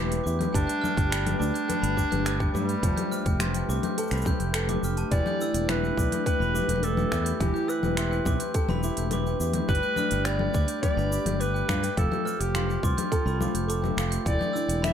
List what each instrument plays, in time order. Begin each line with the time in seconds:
Already playing: fingered electric bass E1, steel-string acoustic guitar E3 E4 B4, ambient pad A3 D4 G4 B4
0.09 glockenspiel G5, open hi-hat, cabasa
0.24 fingered electric bass E2, steel-string acoustic guitar E4, glockenspiel D6, cabasa
0.39 glockenspiel G6, open hi-hat, low conga, cabasa
0.53 fingered electric bass G1, steel-string acoustic guitar G3, clarinet D4, glockenspiel G5, kick, open hi-hat, cabasa
0.67 glockenspiel G6, open hi-hat, cabasa
0.81 steel-string acoustic guitar D4, glockenspiel F6, low conga, cabasa
0.96 fingered electric bass G1, glockenspiel G5, kick, open hi-hat, cabasa
1.11 steel-string acoustic guitar G4, glockenspiel B5, finger snap, open hi-hat, cabasa
1.25 glockenspiel G5, open hi-hat, low conga, cabasa
1.39 fingered electric bass D2, clarinet D4, steel-string acoustic guitar D4, glockenspiel D6, cabasa
1.54 glockenspiel G6, open hi-hat, cabasa
1.68 steel-string acoustic guitar B4, glockenspiel G5, open hi-hat, low conga, cabasa
1.82 fingered electric bass G1, glockenspiel B5, open hi-hat, cabasa
1.97 steel-string acoustic guitar G4, glockenspiel D6, kick, cabasa
2.11 fingered electric bass G1, glockenspiel G6, open hi-hat, low conga, cabasa
2.25 steel-string acoustic guitar B4, glockenspiel D6, finger snap, open hi-hat, cabasa
2.40 glockenspiel G5, kick, cabasa
2.53 fingered electric bass G2, clarinet G3, steel-string acoustic guitar G4, glockenspiel D6, low conga, cabasa
2.69 glockenspiel G6, open hi-hat, cabasa
2.83 fingered electric bass F1, steel-string acoustic guitar F3, glockenspiel G5, kick, open hi-hat, cabasa
2.97 glockenspiel G6, open hi-hat, low conga, cabasa
3.12 steel-string acoustic guitar C4, glockenspiel F6, cabasa
3.25 fingered electric bass F1, glockenspiel G5, kick, open hi-hat, cabasa
3.40 steel-string acoustic guitar G4, glockenspiel C6, finger snap, open hi-hat, low conga, cabasa
3.54 glockenspiel G5, open hi-hat, cabasa
3.69 fingered electric bass C2, steel-string acoustic guitar C4, glockenspiel D6, cabasa
3.83 glockenspiel G6, open hi-hat, low conga, cabasa
3.98 steel-string acoustic guitar A4, glockenspiel G5, open hi-hat, cabasa
4.03 cabasa
4.07 fingered electric bass C2, finger snap, open hi-hat, cabasa
4.12 glockenspiel B5, cabasa
4.17 cabasa
4.21 low conga, cabasa
4.26 steel-string acoustic guitar G4, glockenspiel G6, kick, cabasa
4.40 fingered electric bass F1, glockenspiel G6, open hi-hat, cabasa
4.54 steel-string acoustic guitar A4, glockenspiel G5, finger snap, open hi-hat, cabasa
4.69 glockenspiel D6, open hi-hat, low conga, cabasa
4.83 fingered electric bass F1, steel-string acoustic guitar G4, glockenspiel F6, cabasa
4.97 glockenspiel A5, open hi-hat, cabasa
5.11 fingered electric bass E1, steel-string acoustic guitar E3, clarinet D5, glockenspiel G5, kick, open hi-hat, cabasa
5.26 glockenspiel G6, low conga, cabasa
5.41 steel-string acoustic guitar D4, glockenspiel E6, cabasa
5.54 fingered electric bass E1, glockenspiel G5, open hi-hat, cabasa
5.69 steel-string acoustic guitar E4, clarinet B4, glockenspiel B5, finger snap, open hi-hat, low conga, cabasa
5.84 glockenspiel G5, cabasa
5.97 fingered electric bass B1, steel-string acoustic guitar D4, glockenspiel D6, kick, cabasa
6.12 glockenspiel G6, open hi-hat, low conga, cabasa
6.26 steel-string acoustic guitar B4, clarinet B4, glockenspiel G5, kick, open hi-hat, cabasa
6.40 fingered electric bass E1, glockenspiel B5, cabasa
6.55 steel-string acoustic guitar E4, glockenspiel D6, low conga, cabasa
6.62 low conga
6.68 fingered electric bass E1, glockenspiel G6, open hi-hat, low conga, cabasa
6.76 low conga
6.83 clarinet A4, steel-string acoustic guitar B4, glockenspiel D6, open hi-hat, cabasa
6.97 glockenspiel G5, low conga, cabasa
7.11 fingered electric bass E2, steel-string acoustic guitar E4, glockenspiel D6, finger snap, kick, cabasa
7.25 glockenspiel G6, open hi-hat, cabasa
7.34 clarinet A4
7.40 fingered electric bass E1, steel-string acoustic guitar E3, clarinet G4, glockenspiel G5, kick, open hi-hat, low conga, cabasa
7.54 glockenspiel G6, cabasa
7.68 steel-string acoustic guitar C4, clarinet B4, glockenspiel E6, cabasa
7.83 fingered electric bass E1, glockenspiel G5, low conga, cabasa
7.97 steel-string acoustic guitar E4, glockenspiel C6, finger snap, open hi-hat, cabasa
8.11 glockenspiel G5, cabasa
8.25 fingered electric bass B1, steel-string acoustic guitar C4, glockenspiel D6, kick, low conga, cabasa
8.40 glockenspiel G6, open hi-hat, cabasa
8.54 steel-string acoustic guitar A4, glockenspiel G5, kick, open hi-hat, cabasa
8.68 fingered electric bass E1, steel-string acoustic guitar B4, glockenspiel B5, low conga, cabasa
8.83 steel-string acoustic guitar E4, glockenspiel D6, cabasa
8.97 fingered electric bass E1, glockenspiel G6, open hi-hat, cabasa
9.11 steel-string acoustic guitar B4, glockenspiel D6, open hi-hat, low conga, cabasa
9.26 glockenspiel G5, cabasa
9.40 fingered electric bass E2, steel-string acoustic guitar E4, glockenspiel D6, cabasa
9.54 glockenspiel G6, open hi-hat, low conga, cabasa
9.68 fingered electric bass G1, steel-string acoustic guitar G3, clarinet B4, glockenspiel G5, kick, cabasa
9.75 open hi-hat
9.83 glockenspiel G6, cabasa
9.96 steel-string acoustic guitar D4, glockenspiel F6, low conga, cabasa
10.11 fingered electric bass G1, glockenspiel G5, open hi-hat, cabasa
10.25 steel-string acoustic guitar G4, clarinet D5, glockenspiel B5, finger snap, open hi-hat, cabasa
10.39 glockenspiel G5, low conga
10.54 fingered electric bass D2, steel-string acoustic guitar D4, glockenspiel D6, kick, cabasa
10.68 glockenspiel G6, open hi-hat, cabasa
10.82 steel-string acoustic guitar B4, clarinet D5, glockenspiel G5, kick, open hi-hat, low conga, cabasa
10.97 fingered electric bass G1, glockenspiel B5, cabasa
11.11 steel-string acoustic guitar G4, glockenspiel D6, cabasa
11.25 fingered electric bass G1, glockenspiel G6, open hi-hat, low conga, cabasa
11.40 clarinet B4, steel-string acoustic guitar B4, glockenspiel D6, open hi-hat, cabasa
11.54 glockenspiel G5, cabasa
11.68 fingered electric bass G2, steel-string acoustic guitar F4, glockenspiel D6, finger snap, kick, low conga, cabasa
11.83 steel-string acoustic guitar G4, glockenspiel G6, open hi-hat, cabasa
11.97 fingered electric bass F1, steel-string acoustic guitar F3, clarinet A4, glockenspiel G5, kick, open hi-hat, cabasa
12.11 glockenspiel G6, low conga, cabasa
12.25 steel-string acoustic guitar C4, glockenspiel F6, cabasa
12.40 fingered electric bass F1, clarinet G4, glockenspiel G5, open hi-hat, cabasa
12.55 steel-string acoustic guitar F4, glockenspiel C6, finger snap, open hi-hat, low conga, cabasa
12.69 glockenspiel G5, cabasa
12.83 fingered electric bass C2, steel-string acoustic guitar C4, clarinet F4, glockenspiel D6, kick, cabasa
12.97 glockenspiel G6, open hi-hat, low conga, cabasa
13.12 steel-string acoustic guitar A4, glockenspiel G5, kick, open hi-hat, cabasa
13.26 fingered electric bass C2, glockenspiel B5, cabasa
13.41 steel-string acoustic guitar F4, glockenspiel D6, low conga, cabasa
13.54 fingered electric bass F1, glockenspiel G6, open hi-hat, cabasa
13.68 steel-string acoustic guitar A4, glockenspiel D6, open hi-hat, cabasa
13.82 glockenspiel G5, low conga, cabasa
13.97 fingered electric bass F1, steel-string acoustic guitar F4, glockenspiel D6, finger snap, cabasa
14.11 glockenspiel G6, open hi-hat, cabasa
14.26 fingered electric bass E1, steel-string acoustic guitar E3, clarinet D5, glockenspiel G5, kick, open hi-hat, cabasa
14.39 glockenspiel G6, low conga, cabasa
14.53 steel-string acoustic guitar D4, glockenspiel E6, cabasa
14.68 fingered electric bass E1, glockenspiel G5, open hi-hat, cabasa
14.82 steel-string acoustic guitar E4, clarinet E5, glockenspiel B5, finger snap, open hi-hat, low conga, cabasa